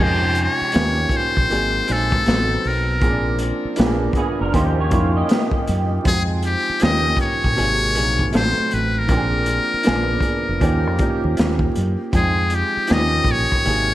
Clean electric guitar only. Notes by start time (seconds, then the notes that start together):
4.16 B3 G#4
4.41 D4 A#4
4.55 D#4 C5
4.80 F4 C#5
5.17 G4 D#5